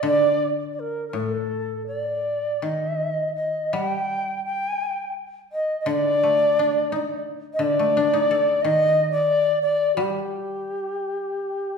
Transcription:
0, 0, Header, 1, 3, 480
1, 0, Start_track
1, 0, Tempo, 741656
1, 25, Time_signature, 4, 2, 24, 8
1, 1945, Tempo, 718563
1, 3865, Tempo, 692841
1, 5785, Tempo, 672646
1, 6745, Tempo, 701754
1, 7964, End_track
2, 0, Start_track
2, 0, Title_t, "Shakuhachi"
2, 0, Program_c, 0, 77
2, 36, Note_on_c, 0, 74, 102
2, 306, Note_off_c, 0, 74, 0
2, 469, Note_on_c, 0, 74, 61
2, 516, Note_on_c, 0, 70, 85
2, 525, Note_off_c, 0, 74, 0
2, 697, Note_off_c, 0, 70, 0
2, 701, Note_on_c, 0, 70, 56
2, 751, Note_on_c, 0, 69, 85
2, 761, Note_off_c, 0, 70, 0
2, 1207, Note_off_c, 0, 69, 0
2, 1211, Note_on_c, 0, 74, 84
2, 1701, Note_on_c, 0, 75, 86
2, 1711, Note_off_c, 0, 74, 0
2, 2174, Note_off_c, 0, 75, 0
2, 2178, Note_on_c, 0, 75, 79
2, 2432, Note_on_c, 0, 78, 89
2, 2442, Note_off_c, 0, 75, 0
2, 2506, Note_off_c, 0, 78, 0
2, 2506, Note_on_c, 0, 79, 89
2, 2905, Note_off_c, 0, 79, 0
2, 2909, Note_on_c, 0, 79, 90
2, 3356, Note_off_c, 0, 79, 0
2, 3627, Note_on_c, 0, 75, 99
2, 3806, Note_off_c, 0, 75, 0
2, 3817, Note_on_c, 0, 75, 72
2, 3865, Note_on_c, 0, 74, 115
2, 3876, Note_off_c, 0, 75, 0
2, 4831, Note_off_c, 0, 74, 0
2, 5012, Note_on_c, 0, 75, 84
2, 5071, Note_on_c, 0, 74, 111
2, 5081, Note_off_c, 0, 75, 0
2, 5760, Note_on_c, 0, 75, 126
2, 5770, Note_off_c, 0, 74, 0
2, 6113, Note_off_c, 0, 75, 0
2, 6118, Note_on_c, 0, 74, 110
2, 6460, Note_off_c, 0, 74, 0
2, 6475, Note_on_c, 0, 74, 104
2, 6713, Note_off_c, 0, 74, 0
2, 6723, Note_on_c, 0, 67, 81
2, 7964, Note_off_c, 0, 67, 0
2, 7964, End_track
3, 0, Start_track
3, 0, Title_t, "Koto"
3, 0, Program_c, 1, 107
3, 18, Note_on_c, 1, 50, 67
3, 733, Note_on_c, 1, 45, 55
3, 1459, Note_off_c, 1, 50, 0
3, 1697, Note_on_c, 1, 51, 49
3, 1705, Note_off_c, 1, 45, 0
3, 2429, Note_on_c, 1, 55, 56
3, 3139, Note_off_c, 1, 51, 0
3, 3852, Note_on_c, 1, 50, 67
3, 3864, Note_off_c, 1, 55, 0
3, 4111, Note_on_c, 1, 57, 45
3, 4358, Note_on_c, 1, 62, 47
3, 4587, Note_on_c, 1, 63, 47
3, 5042, Note_off_c, 1, 50, 0
3, 5050, Note_on_c, 1, 50, 64
3, 5066, Note_off_c, 1, 57, 0
3, 5191, Note_on_c, 1, 57, 51
3, 5304, Note_off_c, 1, 62, 0
3, 5312, Note_on_c, 1, 62, 53
3, 5419, Note_off_c, 1, 63, 0
3, 5427, Note_on_c, 1, 63, 50
3, 5547, Note_on_c, 1, 69, 44
3, 5781, Note_on_c, 1, 51, 67
3, 6149, Note_off_c, 1, 57, 0
3, 6267, Note_off_c, 1, 62, 0
3, 6382, Note_off_c, 1, 63, 0
3, 6491, Note_off_c, 1, 50, 0
3, 6501, Note_off_c, 1, 69, 0
3, 6726, Note_on_c, 1, 55, 59
3, 7216, Note_off_c, 1, 51, 0
3, 7964, Note_off_c, 1, 55, 0
3, 7964, End_track
0, 0, End_of_file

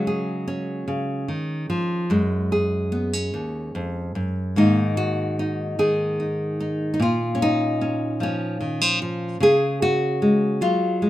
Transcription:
0, 0, Header, 1, 2, 480
1, 0, Start_track
1, 0, Tempo, 815217
1, 1235, Time_signature, 6, 3, 24, 8
1, 3643, Tempo, 803213
1, 6577, End_track
2, 0, Start_track
2, 0, Title_t, "Nylon-string guitar"
2, 0, Program_c, 0, 24
2, 0, Note_on_c, 0, 49, 60
2, 0, Note_on_c, 0, 54, 54
2, 0, Note_on_c, 0, 56, 54
2, 0, Note_on_c, 0, 61, 59
2, 42, Note_on_c, 0, 68, 57
2, 277, Note_off_c, 0, 61, 0
2, 280, Note_on_c, 0, 61, 54
2, 509, Note_off_c, 0, 49, 0
2, 516, Note_on_c, 0, 49, 53
2, 754, Note_off_c, 0, 54, 0
2, 755, Note_off_c, 0, 49, 0
2, 756, Note_on_c, 0, 51, 51
2, 995, Note_off_c, 0, 51, 0
2, 999, Note_on_c, 0, 53, 65
2, 1207, Note_off_c, 0, 61, 0
2, 1236, Note_on_c, 0, 42, 63
2, 1237, Note_off_c, 0, 53, 0
2, 1238, Note_off_c, 0, 56, 0
2, 1240, Note_on_c, 0, 56, 53
2, 1254, Note_off_c, 0, 68, 0
2, 1484, Note_on_c, 0, 68, 56
2, 1719, Note_on_c, 0, 59, 55
2, 1845, Note_off_c, 0, 59, 0
2, 1845, Note_on_c, 0, 61, 42
2, 1961, Note_off_c, 0, 42, 0
2, 1965, Note_on_c, 0, 39, 52
2, 2205, Note_off_c, 0, 39, 0
2, 2207, Note_on_c, 0, 41, 53
2, 2442, Note_off_c, 0, 41, 0
2, 2445, Note_on_c, 0, 42, 53
2, 2660, Note_off_c, 0, 68, 0
2, 2685, Note_off_c, 0, 42, 0
2, 2686, Note_on_c, 0, 44, 64
2, 2688, Note_off_c, 0, 61, 0
2, 2692, Note_on_c, 0, 51, 43
2, 2694, Note_off_c, 0, 56, 0
2, 2696, Note_on_c, 0, 58, 41
2, 2696, Note_on_c, 0, 63, 70
2, 2925, Note_off_c, 0, 63, 0
2, 2927, Note_on_c, 0, 66, 79
2, 3175, Note_on_c, 0, 63, 45
2, 3402, Note_off_c, 0, 51, 0
2, 3405, Note_off_c, 0, 66, 0
2, 3408, Note_on_c, 0, 51, 55
2, 3410, Note_on_c, 0, 68, 71
2, 3642, Note_off_c, 0, 63, 0
2, 3649, Note_on_c, 0, 63, 40
2, 3885, Note_off_c, 0, 63, 0
2, 3892, Note_on_c, 0, 63, 45
2, 4084, Note_off_c, 0, 63, 0
2, 4087, Note_off_c, 0, 68, 0
2, 4091, Note_on_c, 0, 63, 57
2, 4103, Note_off_c, 0, 58, 0
2, 4124, Note_off_c, 0, 44, 0
2, 4126, Note_on_c, 0, 46, 63
2, 4129, Note_off_c, 0, 51, 0
2, 4129, Note_off_c, 0, 63, 0
2, 4142, Note_on_c, 0, 65, 72
2, 4336, Note_on_c, 0, 61, 57
2, 4375, Note_off_c, 0, 65, 0
2, 4381, Note_on_c, 0, 63, 85
2, 4608, Note_off_c, 0, 61, 0
2, 4615, Note_on_c, 0, 61, 44
2, 4847, Note_on_c, 0, 53, 56
2, 4865, Note_off_c, 0, 61, 0
2, 4865, Note_on_c, 0, 61, 77
2, 5086, Note_off_c, 0, 53, 0
2, 5088, Note_on_c, 0, 51, 40
2, 5213, Note_off_c, 0, 51, 0
2, 5213, Note_on_c, 0, 53, 34
2, 5328, Note_off_c, 0, 53, 0
2, 5335, Note_off_c, 0, 63, 0
2, 5335, Note_on_c, 0, 53, 45
2, 5539, Note_off_c, 0, 46, 0
2, 5542, Note_off_c, 0, 53, 0
2, 5565, Note_on_c, 0, 49, 69
2, 5575, Note_off_c, 0, 61, 0
2, 5580, Note_on_c, 0, 68, 84
2, 5813, Note_off_c, 0, 68, 0
2, 5815, Note_on_c, 0, 66, 91
2, 6053, Note_on_c, 0, 56, 49
2, 6284, Note_off_c, 0, 49, 0
2, 6288, Note_on_c, 0, 54, 54
2, 6291, Note_on_c, 0, 65, 82
2, 6529, Note_off_c, 0, 56, 0
2, 6532, Note_on_c, 0, 56, 41
2, 6577, Note_off_c, 0, 54, 0
2, 6577, Note_off_c, 0, 56, 0
2, 6577, Note_off_c, 0, 65, 0
2, 6577, Note_off_c, 0, 66, 0
2, 6577, End_track
0, 0, End_of_file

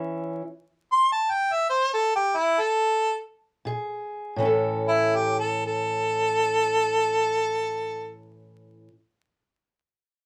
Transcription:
0, 0, Header, 1, 3, 480
1, 0, Start_track
1, 0, Tempo, 578592
1, 1416, Tempo, 632244
1, 1417, Time_signature, 4, 2, 24, 8
1, 2376, Tempo, 681818
1, 2856, Tempo, 748130
1, 7094, End_track
2, 0, Start_track
2, 0, Title_t, "Harmonica"
2, 0, Program_c, 0, 22
2, 767, Note_on_c, 0, 84, 111
2, 921, Note_off_c, 0, 84, 0
2, 931, Note_on_c, 0, 81, 90
2, 1090, Note_on_c, 0, 79, 100
2, 1102, Note_off_c, 0, 81, 0
2, 1268, Note_on_c, 0, 76, 92
2, 1281, Note_off_c, 0, 79, 0
2, 1402, Note_off_c, 0, 76, 0
2, 1407, Note_on_c, 0, 72, 96
2, 1562, Note_off_c, 0, 72, 0
2, 1591, Note_on_c, 0, 69, 100
2, 1733, Note_off_c, 0, 69, 0
2, 1759, Note_on_c, 0, 67, 104
2, 1923, Note_on_c, 0, 64, 102
2, 1935, Note_off_c, 0, 67, 0
2, 2092, Note_on_c, 0, 69, 115
2, 2104, Note_off_c, 0, 64, 0
2, 2542, Note_off_c, 0, 69, 0
2, 3646, Note_on_c, 0, 64, 94
2, 3818, Note_on_c, 0, 67, 86
2, 3828, Note_off_c, 0, 64, 0
2, 3966, Note_off_c, 0, 67, 0
2, 3974, Note_on_c, 0, 69, 85
2, 4124, Note_off_c, 0, 69, 0
2, 4144, Note_on_c, 0, 69, 100
2, 5746, Note_off_c, 0, 69, 0
2, 7094, End_track
3, 0, Start_track
3, 0, Title_t, "Steel-string acoustic guitar"
3, 0, Program_c, 1, 25
3, 0, Note_on_c, 1, 52, 69
3, 0, Note_on_c, 1, 61, 63
3, 0, Note_on_c, 1, 64, 71
3, 0, Note_on_c, 1, 69, 73
3, 342, Note_off_c, 1, 52, 0
3, 342, Note_off_c, 1, 61, 0
3, 342, Note_off_c, 1, 64, 0
3, 342, Note_off_c, 1, 69, 0
3, 2854, Note_on_c, 1, 46, 85
3, 2864, Note_on_c, 1, 68, 75
3, 3289, Note_off_c, 1, 46, 0
3, 3306, Note_off_c, 1, 68, 0
3, 3312, Note_on_c, 1, 45, 73
3, 3325, Note_on_c, 1, 52, 68
3, 3334, Note_on_c, 1, 61, 67
3, 3351, Note_on_c, 1, 64, 62
3, 3369, Note_on_c, 1, 69, 58
3, 6205, Note_off_c, 1, 45, 0
3, 6212, Note_off_c, 1, 52, 0
3, 6217, Note_off_c, 1, 61, 0
3, 6225, Note_off_c, 1, 64, 0
3, 6234, Note_off_c, 1, 69, 0
3, 7094, End_track
0, 0, End_of_file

